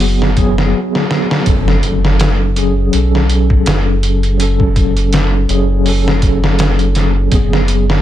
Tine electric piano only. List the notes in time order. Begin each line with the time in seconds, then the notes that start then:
Already playing: F#4 G#4
0.00 F#3 B3 G#4
0.36 F#3 B3 G#4
1.45 F#3 C#4
1.50 A4
2.56 F#3 C#4 G#4
2.91 F#3 C#4
2.96 A4
4.38 F#3 C#4
4.42 A4
5.48 F#3 C#4 G#4
5.84 F#3 C#4
5.89 A4
7.30 F#3 B3
7.35 G#4